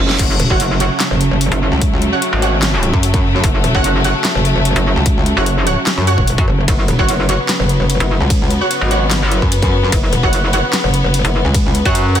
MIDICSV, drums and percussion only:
0, 0, Header, 1, 2, 480
1, 0, Start_track
1, 0, Key_signature, 3, "minor"
1, 0, Tempo, 405405
1, 230, Time_signature, 4, 2, 24, 8
1, 14445, End_track
2, 0, Start_track
2, 0, Title_t, "Drums"
2, 115, Note_on_c, 9, 38, 80
2, 229, Note_on_c, 9, 36, 113
2, 229, Note_on_c, 9, 42, 82
2, 229, Note_on_c, 9, 49, 77
2, 234, Note_off_c, 9, 38, 0
2, 347, Note_off_c, 9, 42, 0
2, 347, Note_off_c, 9, 49, 0
2, 348, Note_off_c, 9, 36, 0
2, 469, Note_on_c, 9, 42, 58
2, 587, Note_off_c, 9, 42, 0
2, 596, Note_on_c, 9, 36, 61
2, 709, Note_on_c, 9, 42, 81
2, 714, Note_off_c, 9, 36, 0
2, 827, Note_off_c, 9, 42, 0
2, 949, Note_on_c, 9, 42, 55
2, 1067, Note_off_c, 9, 42, 0
2, 1189, Note_on_c, 9, 38, 120
2, 1189, Note_on_c, 9, 39, 92
2, 1189, Note_on_c, 9, 42, 86
2, 1307, Note_off_c, 9, 38, 0
2, 1307, Note_off_c, 9, 39, 0
2, 1307, Note_off_c, 9, 42, 0
2, 1429, Note_on_c, 9, 42, 59
2, 1547, Note_off_c, 9, 42, 0
2, 1669, Note_on_c, 9, 42, 88
2, 1787, Note_off_c, 9, 42, 0
2, 1795, Note_on_c, 9, 42, 39
2, 1914, Note_off_c, 9, 42, 0
2, 2149, Note_on_c, 9, 36, 119
2, 2149, Note_on_c, 9, 42, 85
2, 2267, Note_off_c, 9, 36, 0
2, 2267, Note_off_c, 9, 42, 0
2, 2389, Note_on_c, 9, 42, 53
2, 2507, Note_off_c, 9, 42, 0
2, 2629, Note_on_c, 9, 42, 78
2, 2747, Note_off_c, 9, 42, 0
2, 2868, Note_on_c, 9, 42, 55
2, 2987, Note_off_c, 9, 42, 0
2, 3109, Note_on_c, 9, 38, 127
2, 3109, Note_on_c, 9, 39, 93
2, 3109, Note_on_c, 9, 42, 80
2, 3227, Note_off_c, 9, 38, 0
2, 3227, Note_off_c, 9, 39, 0
2, 3227, Note_off_c, 9, 42, 0
2, 3348, Note_on_c, 9, 42, 53
2, 3467, Note_off_c, 9, 42, 0
2, 3475, Note_on_c, 9, 36, 66
2, 3589, Note_on_c, 9, 42, 83
2, 3594, Note_off_c, 9, 36, 0
2, 3707, Note_off_c, 9, 42, 0
2, 3715, Note_on_c, 9, 36, 109
2, 3715, Note_on_c, 9, 42, 40
2, 3833, Note_off_c, 9, 42, 0
2, 3834, Note_off_c, 9, 36, 0
2, 4068, Note_on_c, 9, 42, 80
2, 4069, Note_on_c, 9, 36, 120
2, 4187, Note_off_c, 9, 36, 0
2, 4187, Note_off_c, 9, 42, 0
2, 4309, Note_on_c, 9, 42, 54
2, 4427, Note_off_c, 9, 42, 0
2, 4435, Note_on_c, 9, 36, 65
2, 4549, Note_on_c, 9, 42, 77
2, 4554, Note_off_c, 9, 36, 0
2, 4667, Note_off_c, 9, 42, 0
2, 4789, Note_on_c, 9, 42, 54
2, 4907, Note_off_c, 9, 42, 0
2, 5029, Note_on_c, 9, 38, 126
2, 5029, Note_on_c, 9, 39, 92
2, 5029, Note_on_c, 9, 42, 79
2, 5147, Note_off_c, 9, 38, 0
2, 5147, Note_off_c, 9, 39, 0
2, 5147, Note_off_c, 9, 42, 0
2, 5269, Note_on_c, 9, 42, 53
2, 5387, Note_off_c, 9, 42, 0
2, 5509, Note_on_c, 9, 42, 80
2, 5627, Note_off_c, 9, 42, 0
2, 5636, Note_on_c, 9, 42, 38
2, 5754, Note_off_c, 9, 42, 0
2, 5989, Note_on_c, 9, 36, 127
2, 5989, Note_on_c, 9, 42, 80
2, 6107, Note_off_c, 9, 42, 0
2, 6108, Note_off_c, 9, 36, 0
2, 6229, Note_on_c, 9, 42, 52
2, 6347, Note_off_c, 9, 42, 0
2, 6469, Note_on_c, 9, 42, 75
2, 6587, Note_off_c, 9, 42, 0
2, 6709, Note_on_c, 9, 42, 51
2, 6828, Note_off_c, 9, 42, 0
2, 6949, Note_on_c, 9, 38, 123
2, 6949, Note_on_c, 9, 39, 88
2, 6949, Note_on_c, 9, 42, 75
2, 7068, Note_off_c, 9, 38, 0
2, 7068, Note_off_c, 9, 39, 0
2, 7068, Note_off_c, 9, 42, 0
2, 7189, Note_on_c, 9, 42, 49
2, 7308, Note_off_c, 9, 42, 0
2, 7315, Note_on_c, 9, 36, 65
2, 7429, Note_on_c, 9, 42, 79
2, 7434, Note_off_c, 9, 36, 0
2, 7547, Note_off_c, 9, 42, 0
2, 7555, Note_on_c, 9, 36, 106
2, 7556, Note_on_c, 9, 42, 37
2, 7674, Note_off_c, 9, 36, 0
2, 7674, Note_off_c, 9, 42, 0
2, 7909, Note_on_c, 9, 36, 124
2, 7909, Note_on_c, 9, 42, 80
2, 7909, Note_on_c, 9, 51, 67
2, 8027, Note_off_c, 9, 36, 0
2, 8027, Note_off_c, 9, 42, 0
2, 8027, Note_off_c, 9, 51, 0
2, 8149, Note_on_c, 9, 42, 51
2, 8267, Note_off_c, 9, 42, 0
2, 8275, Note_on_c, 9, 36, 63
2, 8389, Note_on_c, 9, 42, 78
2, 8389, Note_on_c, 9, 51, 48
2, 8394, Note_off_c, 9, 36, 0
2, 8507, Note_off_c, 9, 42, 0
2, 8507, Note_off_c, 9, 51, 0
2, 8629, Note_on_c, 9, 42, 50
2, 8748, Note_off_c, 9, 42, 0
2, 8869, Note_on_c, 9, 38, 119
2, 8869, Note_on_c, 9, 39, 86
2, 8869, Note_on_c, 9, 42, 78
2, 8869, Note_on_c, 9, 51, 65
2, 8988, Note_off_c, 9, 38, 0
2, 8988, Note_off_c, 9, 39, 0
2, 8988, Note_off_c, 9, 42, 0
2, 8988, Note_off_c, 9, 51, 0
2, 9109, Note_on_c, 9, 42, 52
2, 9228, Note_off_c, 9, 42, 0
2, 9349, Note_on_c, 9, 42, 79
2, 9349, Note_on_c, 9, 51, 51
2, 9467, Note_off_c, 9, 42, 0
2, 9467, Note_off_c, 9, 51, 0
2, 9476, Note_on_c, 9, 42, 37
2, 9594, Note_off_c, 9, 42, 0
2, 9829, Note_on_c, 9, 36, 121
2, 9829, Note_on_c, 9, 42, 81
2, 9829, Note_on_c, 9, 51, 72
2, 9948, Note_off_c, 9, 36, 0
2, 9948, Note_off_c, 9, 42, 0
2, 9948, Note_off_c, 9, 51, 0
2, 10069, Note_on_c, 9, 42, 53
2, 10188, Note_off_c, 9, 42, 0
2, 10309, Note_on_c, 9, 42, 78
2, 10309, Note_on_c, 9, 51, 50
2, 10428, Note_off_c, 9, 42, 0
2, 10428, Note_off_c, 9, 51, 0
2, 10549, Note_on_c, 9, 42, 54
2, 10668, Note_off_c, 9, 42, 0
2, 10789, Note_on_c, 9, 38, 110
2, 10789, Note_on_c, 9, 39, 90
2, 10789, Note_on_c, 9, 42, 82
2, 10789, Note_on_c, 9, 51, 66
2, 10908, Note_off_c, 9, 38, 0
2, 10908, Note_off_c, 9, 39, 0
2, 10908, Note_off_c, 9, 42, 0
2, 10908, Note_off_c, 9, 51, 0
2, 11029, Note_on_c, 9, 42, 52
2, 11148, Note_off_c, 9, 42, 0
2, 11156, Note_on_c, 9, 36, 62
2, 11269, Note_on_c, 9, 42, 79
2, 11269, Note_on_c, 9, 51, 51
2, 11274, Note_off_c, 9, 36, 0
2, 11388, Note_off_c, 9, 42, 0
2, 11388, Note_off_c, 9, 51, 0
2, 11396, Note_on_c, 9, 36, 101
2, 11396, Note_on_c, 9, 42, 38
2, 11514, Note_off_c, 9, 36, 0
2, 11514, Note_off_c, 9, 42, 0
2, 11749, Note_on_c, 9, 36, 116
2, 11749, Note_on_c, 9, 42, 84
2, 11749, Note_on_c, 9, 51, 69
2, 11868, Note_off_c, 9, 36, 0
2, 11868, Note_off_c, 9, 42, 0
2, 11868, Note_off_c, 9, 51, 0
2, 11989, Note_on_c, 9, 42, 55
2, 12108, Note_off_c, 9, 42, 0
2, 12116, Note_on_c, 9, 36, 59
2, 12229, Note_on_c, 9, 42, 84
2, 12229, Note_on_c, 9, 51, 49
2, 12234, Note_off_c, 9, 36, 0
2, 12347, Note_off_c, 9, 42, 0
2, 12347, Note_off_c, 9, 51, 0
2, 12469, Note_on_c, 9, 42, 57
2, 12587, Note_off_c, 9, 42, 0
2, 12709, Note_on_c, 9, 38, 112
2, 12709, Note_on_c, 9, 39, 88
2, 12709, Note_on_c, 9, 42, 85
2, 12709, Note_on_c, 9, 51, 70
2, 12828, Note_off_c, 9, 38, 0
2, 12828, Note_off_c, 9, 39, 0
2, 12828, Note_off_c, 9, 42, 0
2, 12828, Note_off_c, 9, 51, 0
2, 12949, Note_on_c, 9, 42, 56
2, 13068, Note_off_c, 9, 42, 0
2, 13189, Note_on_c, 9, 42, 90
2, 13189, Note_on_c, 9, 51, 52
2, 13308, Note_off_c, 9, 42, 0
2, 13308, Note_off_c, 9, 51, 0
2, 13316, Note_on_c, 9, 42, 39
2, 13434, Note_off_c, 9, 42, 0
2, 13669, Note_on_c, 9, 36, 113
2, 13669, Note_on_c, 9, 42, 86
2, 13669, Note_on_c, 9, 51, 68
2, 13787, Note_off_c, 9, 42, 0
2, 13787, Note_off_c, 9, 51, 0
2, 13788, Note_off_c, 9, 36, 0
2, 13909, Note_on_c, 9, 42, 56
2, 14027, Note_off_c, 9, 42, 0
2, 14035, Note_on_c, 9, 42, 40
2, 14036, Note_on_c, 9, 36, 60
2, 14149, Note_off_c, 9, 42, 0
2, 14149, Note_on_c, 9, 42, 83
2, 14149, Note_on_c, 9, 51, 50
2, 14154, Note_off_c, 9, 36, 0
2, 14267, Note_off_c, 9, 42, 0
2, 14267, Note_off_c, 9, 51, 0
2, 14389, Note_on_c, 9, 42, 56
2, 14445, Note_off_c, 9, 42, 0
2, 14445, End_track
0, 0, End_of_file